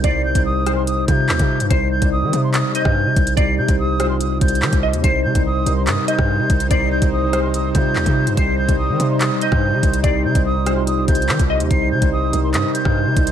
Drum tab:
HH |x--------x--------x-----x-----x--------x-----x--|x--------x--------x-----x-----x-----------x--x--|x--------x--------x-----x-----x-x-x----x-----x--|x--------x--------x-----x-----x-----------x--x--|
CP |------------------------------------x-----------|------------------------x-----------------------|------------------------------------x-----------|------------------------x-----------------------|
SD |------------------r-----------------------------|---------------------------------r--------------|------------------r-----------------------------|---------------------------------r--------------|
BD |o--------o--------------------o--------o--------|o--------o-----------------------o--------o-----|o--------o--------------------o--------o--------|o--------o-----------------------o--------o-----|

HH |x--------x--------x-----x-----x--------x-----x--|x--------x--------x-----x-----x-----------x--x--|x--------x--------x-----x-----x-x-x----x-----x--|x--------x--------x-----x-----x-----------x--x--|
CP |------------------------------------x-----------|------------------------x-----------------------|------------------------------------x-----------|------------------------x-----------------------|
SD |------------------r-----------------------------|---------------------------------r--------------|------------------r-----------------------------|---------------------------------r--------------|
BD |o--------o--------------------o--------o--------|o--------o-----------------------o--------o-----|o--------o--------------------o--------o--------|o--------o-----------------------o--------o-----|